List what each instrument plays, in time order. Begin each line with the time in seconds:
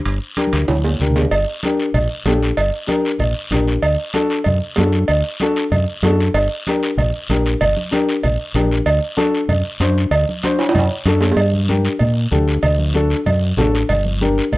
0.05 fingered electric bass G1, high timbale, long guiro
0.37 upright piano D4 G4 A#4, high conga, high timbale, short guiro
0.47 high conga
0.53 fingered electric bass D2, high timbale, short guiro
0.58 high conga
0.68 fingered electric bass D2, low conga, high timbale, long guiro
0.78 high conga
0.84 low timbale
0.99 fingered electric bass D2, upright piano D4 G4 A#4, low conga, short guiro
1.10 low conga
1.16 low timbale, short guiro
1.21 low conga
1.31 fingered electric bass G1, cowbell, long guiro
1.63 upright piano D4 G4 A#4, cowbell, high conga, short guiro
1.79 short guiro
1.94 fingered electric bass A#1, cowbell, low conga, long guiro
2.25 fingered electric bass A#1, upright piano D4 G4 A4, cowbell, high conga, low timbale, short guiro
2.43 short guiro
2.57 fingered electric bass G1, cowbell, long guiro
2.87 upright piano D4 G4 A#4, cowbell, high conga, short guiro
3.05 short guiro
3.19 fingered electric bass A#1, cowbell, low conga, long guiro
3.51 fingered electric bass A#1, upright piano D4 G4 A#4, cowbell, high conga, low conga, short guiro
3.68 short guiro
3.82 fingered electric bass D2, cowbell, long guiro
4.14 upright piano D4 F#4 A4, cowbell, high conga, short guiro
4.30 short guiro
4.44 fingered electric bass F#2, cowbell, low conga, long guiro
4.76 fingered electric bass F#2, upright piano D4 F#4 A4, cowbell, high conga, low timbale, short guiro
4.93 short guiro
5.08 fingered electric bass D2, cowbell, long guiro
5.40 upright piano D4 F#4 A4, cowbell, high conga, short guiro
5.56 short guiro
5.72 fingered electric bass F#2, cowbell, low conga, long guiro
6.02 fingered electric bass F#2, upright piano D4 F#4 A4, cowbell, high conga, low timbale, short guiro
6.20 short guiro
6.34 fingered electric bass G1, cowbell, long guiro
6.67 upright piano D4 G4 A#4, cowbell, high conga, short guiro
6.83 short guiro
6.97 fingered electric bass A#1, cowbell, low conga, long guiro
7.29 fingered electric bass A#1, upright piano D4 G4 A#4, cowbell, high conga, short guiro
7.46 short guiro
7.61 fingered electric bass G1, cowbell, low conga, long guiro
7.77 high conga
7.91 upright piano D4 G4 A#4, cowbell, high conga, short guiro
8.09 short guiro
8.23 fingered electric bass A#1, cowbell, low conga, long guiro
8.54 fingered electric bass A#1, upright piano D4 G4 A#4, cowbell, high conga, short guiro
8.71 short guiro
8.86 fingered electric bass D2, cowbell, long guiro
9.17 upright piano D4 F#4 A4, cowbell, high conga, short guiro
9.35 short guiro
9.48 fingered electric bass F#2, cowbell, low conga, long guiro
9.80 fingered electric bass F#2, upright piano D4 F#4 C5, cowbell, high conga, short guiro
9.98 short guiro
10.11 fingered electric bass D2, cowbell, long guiro
10.29 high conga
10.43 upright piano D4 F#4 C5, cowbell, high conga, short guiro
10.59 high timbale, short guiro
10.69 high timbale
10.75 fingered electric bass F#2, cowbell, low conga, long guiro
10.79 high timbale
11.05 fingered electric bass F#2, upright piano D4 F#4 A4, cowbell, high conga, short guiro
11.21 low timbale, short guiro
11.32 low timbale
11.36 fingered electric bass G2, cowbell, long guiro
11.53 high conga
11.69 upright piano D4 G4 A#4, high conga, short guiro
11.85 short guiro
11.99 fingered electric bass A#2, cowbell, low conga, long guiro
12.31 fingered electric bass D2, upright piano D4 G4 A4, high conga, low conga, short guiro
12.48 short guiro
12.63 fingered electric bass D2, cowbell, low conga, long guiro
12.78 high conga
12.94 upright piano D4 F#4 A4, high conga, short guiro
13.10 short guiro
13.26 fingered electric bass F#2, cowbell, low conga, long guiro
13.57 fingered electric bass A1, upright piano D4 F#4 A4, high conga, low conga, low timbale, short guiro
13.75 short guiro
13.89 fingered electric bass G1, cowbell, low conga, long guiro
14.06 high conga
14.21 upright piano D4 G4 A#4, high conga, short guiro
14.38 short guiro
14.52 fingered electric bass A#1, cowbell, low conga, long guiro